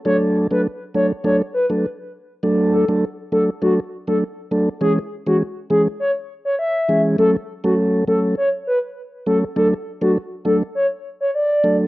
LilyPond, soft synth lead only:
\new Staff \with { instrumentName = "Soft synth lead" } { \time 4/4 \key d \lydian \tempo 4 = 101 cis''16 r8 b'16 r8 cis''16 r16 cis''16 r16 b'16 r4 r16 | r8 a'16 r8. a'16 r16 fis'16 r8 a'16 r4 | gis'16 r8 fis'16 r8 gis'16 r16 cis''16 r8 cis''16 e''8. r16 | a'16 r8 fis'16 r8 a'16 r16 cis''16 r16 b'16 r8. a'16 r16 |
a'16 r8 fis'16 r8 a'16 r16 cis''16 r8 cis''16 d''8. r16 | }